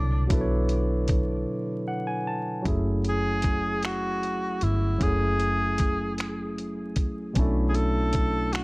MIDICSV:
0, 0, Header, 1, 5, 480
1, 0, Start_track
1, 0, Key_signature, 3, "minor"
1, 0, Tempo, 784314
1, 185, Time_signature, 6, 3, 24, 8
1, 5286, End_track
2, 0, Start_track
2, 0, Title_t, "Tenor saxophone"
2, 0, Program_c, 0, 66
2, 0, Note_on_c, 0, 62, 85
2, 159, Note_off_c, 0, 62, 0
2, 1891, Note_on_c, 0, 68, 96
2, 2334, Note_off_c, 0, 68, 0
2, 2360, Note_on_c, 0, 66, 94
2, 2838, Note_on_c, 0, 64, 80
2, 2847, Note_off_c, 0, 66, 0
2, 3075, Note_on_c, 0, 68, 92
2, 3085, Note_off_c, 0, 64, 0
2, 4031, Note_off_c, 0, 68, 0
2, 4707, Note_on_c, 0, 68, 65
2, 4747, Note_on_c, 0, 69, 98
2, 4756, Note_off_c, 0, 68, 0
2, 5221, Note_on_c, 0, 66, 92
2, 5231, Note_off_c, 0, 69, 0
2, 5286, Note_off_c, 0, 66, 0
2, 5286, End_track
3, 0, Start_track
3, 0, Title_t, "Tine electric piano"
3, 0, Program_c, 1, 4
3, 0, Control_c, 1, 64, 127
3, 0, Note_on_c, 1, 47, 61
3, 0, Note_on_c, 1, 50, 54
3, 0, Note_on_c, 1, 54, 59
3, 0, Note_on_c, 1, 64, 62
3, 0, Note_on_c, 1, 69, 49
3, 0, Note_on_c, 1, 73, 65
3, 152, Note_off_c, 1, 47, 0
3, 157, Note_off_c, 1, 54, 0
3, 161, Note_off_c, 1, 50, 0
3, 165, Note_off_c, 1, 64, 0
3, 165, Note_on_c, 1, 47, 63
3, 170, Note_off_c, 1, 69, 0
3, 175, Note_on_c, 1, 54, 62
3, 181, Note_on_c, 1, 62, 50
3, 192, Note_on_c, 1, 64, 56
3, 194, Note_off_c, 1, 73, 0
3, 200, Note_on_c, 1, 69, 59
3, 212, Note_on_c, 1, 71, 57
3, 238, Note_off_c, 1, 71, 0
3, 251, Note_on_c, 1, 73, 63
3, 1148, Note_on_c, 1, 78, 70
3, 1259, Note_off_c, 1, 78, 0
3, 1267, Note_on_c, 1, 80, 71
3, 1378, Note_off_c, 1, 80, 0
3, 1391, Note_on_c, 1, 81, 71
3, 1591, Note_off_c, 1, 47, 0
3, 1596, Note_off_c, 1, 54, 0
3, 1599, Note_off_c, 1, 62, 0
3, 1604, Note_off_c, 1, 64, 0
3, 1605, Note_on_c, 1, 54, 61
3, 1608, Note_off_c, 1, 69, 0
3, 1612, Note_off_c, 1, 81, 0
3, 1616, Note_on_c, 1, 61, 56
3, 1628, Note_on_c, 1, 64, 54
3, 1632, Control_c, 1, 64, 0
3, 1634, Note_off_c, 1, 73, 0
3, 1641, Note_on_c, 1, 68, 61
3, 1651, Note_on_c, 1, 57, 68
3, 1758, Control_c, 1, 64, 127
3, 3031, Note_off_c, 1, 54, 0
3, 3036, Note_off_c, 1, 61, 0
3, 3042, Note_off_c, 1, 64, 0
3, 3046, Note_on_c, 1, 54, 48
3, 3049, Note_off_c, 1, 68, 0
3, 3054, Note_off_c, 1, 57, 0
3, 3059, Note_on_c, 1, 61, 49
3, 3070, Note_on_c, 1, 64, 47
3, 3080, Note_on_c, 1, 68, 50
3, 3092, Note_on_c, 1, 57, 58
3, 4471, Note_off_c, 1, 54, 0
3, 4478, Note_off_c, 1, 61, 0
3, 4483, Note_off_c, 1, 64, 0
3, 4488, Note_off_c, 1, 68, 0
3, 4488, Note_on_c, 1, 47, 70
3, 4495, Note_off_c, 1, 57, 0
3, 4496, Note_on_c, 1, 54, 66
3, 4505, Note_on_c, 1, 61, 61
3, 4513, Control_c, 1, 64, 0
3, 4515, Note_on_c, 1, 62, 59
3, 4524, Note_on_c, 1, 64, 65
3, 4533, Note_on_c, 1, 57, 79
3, 4630, Control_c, 1, 64, 127
3, 5286, Note_off_c, 1, 47, 0
3, 5286, Note_off_c, 1, 54, 0
3, 5286, Note_off_c, 1, 57, 0
3, 5286, Note_off_c, 1, 61, 0
3, 5286, Note_off_c, 1, 62, 0
3, 5286, Note_off_c, 1, 64, 0
3, 5286, End_track
4, 0, Start_track
4, 0, Title_t, "Fingered electric bass"
4, 0, Program_c, 2, 33
4, 0, Note_on_c, 2, 36, 90
4, 163, Note_off_c, 2, 36, 0
4, 189, Note_on_c, 2, 35, 94
4, 883, Note_off_c, 2, 35, 0
4, 1629, Note_on_c, 2, 30, 91
4, 2803, Note_off_c, 2, 30, 0
4, 2831, Note_on_c, 2, 31, 68
4, 3045, Note_off_c, 2, 31, 0
4, 3069, Note_on_c, 2, 30, 91
4, 4267, Note_off_c, 2, 30, 0
4, 4267, Note_on_c, 2, 36, 74
4, 4483, Note_off_c, 2, 36, 0
4, 4507, Note_on_c, 2, 35, 83
4, 5286, Note_off_c, 2, 35, 0
4, 5286, End_track
5, 0, Start_track
5, 0, Title_t, "Drums"
5, 184, Note_on_c, 9, 42, 74
5, 185, Note_on_c, 9, 36, 114
5, 245, Note_off_c, 9, 42, 0
5, 246, Note_off_c, 9, 36, 0
5, 422, Note_on_c, 9, 42, 48
5, 483, Note_off_c, 9, 42, 0
5, 659, Note_on_c, 9, 42, 56
5, 669, Note_on_c, 9, 36, 79
5, 721, Note_off_c, 9, 42, 0
5, 730, Note_off_c, 9, 36, 0
5, 1625, Note_on_c, 9, 36, 97
5, 1625, Note_on_c, 9, 42, 59
5, 1686, Note_off_c, 9, 36, 0
5, 1686, Note_off_c, 9, 42, 0
5, 1864, Note_on_c, 9, 42, 39
5, 1925, Note_off_c, 9, 42, 0
5, 2094, Note_on_c, 9, 42, 67
5, 2107, Note_on_c, 9, 36, 72
5, 2155, Note_off_c, 9, 42, 0
5, 2168, Note_off_c, 9, 36, 0
5, 2341, Note_on_c, 9, 42, 54
5, 2354, Note_on_c, 9, 26, 96
5, 2402, Note_off_c, 9, 42, 0
5, 2415, Note_off_c, 9, 26, 0
5, 2590, Note_on_c, 9, 42, 40
5, 2651, Note_off_c, 9, 42, 0
5, 2823, Note_on_c, 9, 42, 64
5, 2884, Note_off_c, 9, 42, 0
5, 3064, Note_on_c, 9, 42, 57
5, 3065, Note_on_c, 9, 36, 90
5, 3126, Note_off_c, 9, 36, 0
5, 3126, Note_off_c, 9, 42, 0
5, 3302, Note_on_c, 9, 42, 43
5, 3363, Note_off_c, 9, 42, 0
5, 3538, Note_on_c, 9, 42, 70
5, 3548, Note_on_c, 9, 36, 80
5, 3599, Note_off_c, 9, 42, 0
5, 3609, Note_off_c, 9, 36, 0
5, 3783, Note_on_c, 9, 42, 56
5, 3796, Note_on_c, 9, 26, 91
5, 3844, Note_off_c, 9, 42, 0
5, 3857, Note_off_c, 9, 26, 0
5, 4029, Note_on_c, 9, 42, 42
5, 4090, Note_off_c, 9, 42, 0
5, 4259, Note_on_c, 9, 42, 69
5, 4263, Note_on_c, 9, 36, 68
5, 4320, Note_off_c, 9, 42, 0
5, 4324, Note_off_c, 9, 36, 0
5, 4500, Note_on_c, 9, 42, 64
5, 4504, Note_on_c, 9, 36, 103
5, 4562, Note_off_c, 9, 42, 0
5, 4565, Note_off_c, 9, 36, 0
5, 4740, Note_on_c, 9, 42, 42
5, 4801, Note_off_c, 9, 42, 0
5, 4974, Note_on_c, 9, 42, 67
5, 4986, Note_on_c, 9, 36, 76
5, 5035, Note_off_c, 9, 42, 0
5, 5048, Note_off_c, 9, 36, 0
5, 5219, Note_on_c, 9, 42, 54
5, 5232, Note_on_c, 9, 26, 103
5, 5280, Note_off_c, 9, 42, 0
5, 5286, Note_off_c, 9, 26, 0
5, 5286, End_track
0, 0, End_of_file